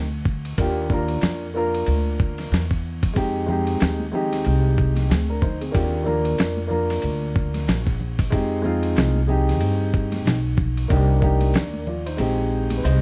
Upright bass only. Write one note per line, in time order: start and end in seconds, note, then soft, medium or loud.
0.00 0.55 D2 medium
0.58 1.19 D#2 loud
1.22 1.84 F2 medium
1.87 2.49 D2 medium
2.52 3.13 E2 medium
3.16 3.78 F2 loud
3.81 4.42 D#2 medium
4.46 5.07 C2 loud
5.10 5.71 D2 loud
5.75 6.36 D#2 loud
6.39 7.00 F2 medium
7.03 7.65 D2 medium
7.67 8.29 A#1 loud
8.32 8.94 F2 loud
8.97 9.61 C2 medium
9.61 10.22 G2 medium
10.26 10.87 B1 medium
10.90 11.52 C2 loud
11.55 12.16 D#2 medium
12.19 12.81 A#1 loud
12.84 13.02 C2 medium